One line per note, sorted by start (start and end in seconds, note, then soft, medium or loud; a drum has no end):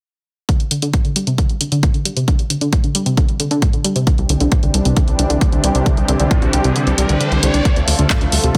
0.49 0.55 D3 medium
0.49 kick loud
0.49 closed hi-hat medium
0.60 closed hi-hat soft
0.71 0.78 D3 medium
0.71 closed hi-hat medium
0.82 0.92 D3 medium
0.82 closed hi-hat medium
0.93 1.00 A2 medium
0.93 kick loud
0.93 closed hi-hat soft
1.05 1.09 D3 medium
1.05 closed hi-hat soft
1.16 1.26 G3 medium
1.16 closed hi-hat medium
1.27 1.31 C3 loud
1.27 closed hi-hat medium
1.38 1.45 D3 medium
1.38 kick loud
1.38 closed hi-hat soft
1.49 closed hi-hat soft
1.61 1.67 D3 medium
1.61 closed hi-hat medium
1.72 1.82 D3 loud
1.72 closed hi-hat medium
1.83 1.90 A2 medium
1.83 kick loud
1.83 closed hi-hat medium
1.94 1.98 D3 medium
1.94 closed hi-hat soft
2.05 2.15 G3 medium
2.05 closed hi-hat medium
2.17 2.21 C3 loud
2.17 closed hi-hat medium
2.28 2.34 D3 medium
2.28 kick loud
2.28 closed hi-hat soft
2.39 closed hi-hat soft
2.50 2.57 D3 medium
2.50 closed hi-hat medium
2.61 2.71 D3 loud
2.61 closed hi-hat medium
2.73 2.79 A2 medium
2.73 kick loud
2.73 closed hi-hat soft
2.84 2.88 D3 medium
2.84 closed hi-hat soft
2.95 3.05 G3 medium
2.95 closed hi-hat medium
3.06 3.10 C3 loud
3.06 closed hi-hat medium
3.17 3.24 D3 medium
3.17 kick loud
3.17 closed hi-hat medium
3.29 closed hi-hat soft
3.40 3.46 D3 medium
3.40 closed hi-hat medium
3.51 3.61 D3 loud
3.51 closed hi-hat soft
3.62 3.69 A2 medium
3.62 kick loud
3.62 closed hi-hat medium
3.73 3.77 D3 medium
3.73 closed hi-hat soft
3.84 3.95 G3 medium
3.84 closed hi-hat medium
3.96 4.00 C3 loud
3.96 closed hi-hat medium
4.07 4.14 D3 medium
4.07 7.62 E3 medium
4.07 7.62 G3 medium
4.07 7.62 C4 medium
4.07 7.62 D4 medium
4.07 7.62 G4 medium
4.07 kick loud
4.07 closed hi-hat soft
4.07 riser medium
4.18 4.25 C2 medium
4.18 closed hi-hat soft
4.29 4.36 C2 loud
4.29 4.36 D3 medium
4.29 closed hi-hat medium
4.40 4.48 C2 medium
4.40 4.51 D3 loud
4.40 closed hi-hat soft
4.52 4.58 A2 medium
4.52 kick loud
4.52 closed hi-hat soft
4.63 4.70 C2 medium
4.63 4.67 D3 medium
4.63 closed hi-hat soft
4.74 4.81 C2 loud
4.74 4.84 G3 medium
4.74 closed hi-hat medium
4.85 4.92 C2 medium
4.85 4.89 C3 loud
4.85 closed hi-hat soft
4.96 5.03 D3 medium
4.96 kick loud
4.96 closed hi-hat soft
5.08 5.15 C2 medium
5.08 closed hi-hat soft
5.19 5.26 C2 loud
5.19 5.26 D3 medium
5.19 closed hi-hat medium
5.30 5.37 C2 medium
5.30 5.40 D3 loud
5.30 closed hi-hat soft
5.41 5.48 A2 medium
5.41 kick loud
5.41 closed hi-hat medium
5.52 5.59 C2 medium
5.52 5.56 D3 medium
5.52 closed hi-hat soft
5.64 5.71 C2 medium
5.64 5.74 G3 medium
5.64 closed hi-hat medium
5.75 5.82 C2 medium
5.75 5.79 C3 loud
5.75 closed hi-hat soft
5.86 5.93 D3 medium
5.86 kick loud
5.86 closed hi-hat soft
5.97 6.04 C2 medium
5.97 closed hi-hat soft
6.08 6.15 C2 loud
6.08 6.15 D3 medium
6.08 closed hi-hat medium
6.20 6.27 C2 medium
6.20 6.30 D3 loud
6.20 closed hi-hat soft
6.31 6.38 A2 medium
6.31 kick loud
6.31 closed hi-hat soft
6.42 6.49 C2 medium
6.42 6.46 D3 medium
6.42 closed hi-hat soft
6.53 6.60 C2 loud
6.53 6.63 G3 medium
6.53 closed hi-hat medium
6.64 6.71 C2 medium
6.64 6.69 C3 loud
6.64 closed hi-hat soft
6.76 6.82 D3 medium
6.76 closed hi-hat soft
6.87 6.94 C2 medium
6.87 closed hi-hat soft
6.98 7.05 C2 medium
6.98 7.05 G3 medium
6.98 closed hi-hat medium
7.09 7.16 C2 medium
7.09 7.19 D3 medium
7.09 closed hi-hat soft
7.21 7.24 D3 medium
7.21 closed hi-hat soft
7.32 7.39 C2 medium
7.32 7.38 D3 medium
7.32 closed hi-hat soft
7.43 7.50 C2 loud
7.43 7.53 D3 medium
7.43 closed hi-hat medium
7.54 7.61 C2 medium
7.54 7.58 D4 medium
7.54 closed hi-hat soft
7.65 7.72 D3 medium
7.65 8.58 D3 medium
7.65 8.58 F3 medium
7.65 8.58 A3 medium
7.65 8.58 F4 medium
7.65 8.58 A4 medium
7.65 kick loud
7.65 closed hi-hat medium
7.76 7.83 D2 medium
7.76 closed hi-hat soft
7.88 7.95 D2 loud
7.88 7.94 D3 medium
7.88 open hi-hat loud
7.99 8.06 D2 medium
7.99 8.09 D3 loud
7.99 closed hi-hat medium
8.10 8.17 A2 medium
8.10 kick loud
8.10 clap loud
8.10 closed hi-hat medium
8.21 8.28 D2 medium
8.21 8.25 D3 medium
8.21 closed hi-hat soft
8.32 8.39 D2 loud
8.32 8.42 G3 medium
8.32 open hi-hat loud
8.44 8.51 D2 medium
8.44 8.48 C3 loud
8.44 closed hi-hat medium
8.55 kick loud
8.55 closed hi-hat medium